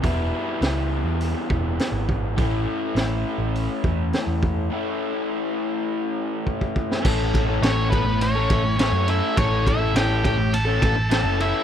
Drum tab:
CC |----------------|----------------|----------------|x---------------|
RD |----------------|----------------|----------------|--x-x-x-x-x-x-x-|
HH |o---o---o---o---|o---o---o---o---|----------------|----------------|
SD |----o-------o---|----o-------o---|---------------o|----o-------o---|
BD |o---------o---o-|o---------o---o-|------------ooo-|o-o---o---o-----|

CC |----------------|
RD |x-x-x-x-x-x-x-x-|
HH |----------------|
SD |----o-------o---|
BD |o-o---o---o-----|